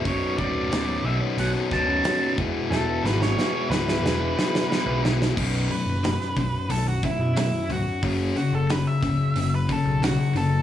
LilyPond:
<<
  \new Staff \with { instrumentName = "Lead electric guitar" } { \time 4/4 \key b \dorian \tempo 4 = 90 cis''8 d''4 e''8 fis''8 a''4 r8 | a'8 b'16 cis''8. b'2 r8 | r8 b'4. a'16 fis'16 e'8 e'8 fis'8 | r8 fis'16 a'16 b'16 e''4 b'16 a'8 fis'8 a'8 | }
  \new Staff \with { instrumentName = "Clean electric guitar" } { \clef bass \time 4/4 \key b \dorian <b,, fis, b, fis>8 <fis, b, fis>8 <b,, fis, b, fis>16 <b, fis cis'>8 <b, fis cis'>8 <b, fis cis'>8 <b, fis cis'>16 <b,, fis, b, fis cis'>16 <b, fis cis'>16 <e, b, e gis b e'>16 <e b e'>16 | <e, b, e b e'>8 <e gis b e'>8 <e, b, e gis b e'>16 <e gis b e'>8 <e gis b e'>8 <e gis b e'>8 <e gis b e'>16 <e, b, e gis b e'>16 <e gis b e'>16 <e gis b e'>16 <e gis b e'>16 | <b,, fis, b,>8 <b,, fis,>8 <b,, fis,>8 <b,, fis,>8 <b,, fis,>8 <b,, fis,>8 <b,, fis,>8 <b,, fis,>8 | <fis, cis fis>8 <fis, cis>8 <fis, cis>8 <fis, cis>8 <fis, cis>8 <fis, cis>8 <fis, cis>8 <fis, cis>8 | }
  \new Staff \with { instrumentName = "Distorted electric guitar" } { \clef bass \time 4/4 \key b \dorian <b,, fis, b,>8 <b,, fis, b,>8 <b,, fis, b,>8 <b,, fis, b,>8 <b,, fis, b,>8 <b,, fis, b,>8 <b,, fis, b,>8 <e, b, e>8 | <e, b, e>8 <e, b, e>8 <e, b, e>8 <e, b, e>8 <e, b, e>8 <e, b, e>8 <e, b, e>8 <e, b, e>8 | <b,, fis, b,>8 <b,, fis,>8 <b,, fis,>8 <b,, fis,>8 <b,, fis,>8 <b,, fis,>8 <b,, fis,>8 <b,, fis,>8 | <fis, cis fis>8 <fis, cis>8 <fis, cis>8 <fis, cis>8 <fis, cis>8 <fis, cis>8 <fis, cis>8 <fis, cis>8 | }
  \new Staff \with { instrumentName = "Picked electric bass" } { \clef bass \time 4/4 \key b \dorian b,,,16 r16 d,,4 b,,16 r16 b,,16 r16 d,,8 r8 e,,16 r16 | e,,8 gis,,8 r8 cis,,8 e,,8 r8. b,,8. | b,,8 r16 fis,,8 r16 b,,16 r16 b,,8 r16 b,8 r16 cis,,16 r16 | fis,,8 r16 fis,,8 r16 cis,,16 r16 fis,,8 r16 b,,8 r16 fis,,8 | }
  \new DrumStaff \with { instrumentName = "Drums" } \drummode { \time 4/4 <hho bd>8 bd8 <hho sn>4 hho8 <bd sn>8 <hho sn>8 bd8 | sn8 sn16 sn16 sn8 sn16 sn16 sn8 sn16 sn16 sn8 sn16 sn16 | <cymc bd>8 hho8 <hho sn>16 sn16 <hho bd>8 hho8 <hho bd>8 <hho sn>8 hho8 | <hho bd>8 hho8 <hho sn>8 <hho bd>8 hho8 <hho bd>8 <hho sn>8 hho8 | }
>>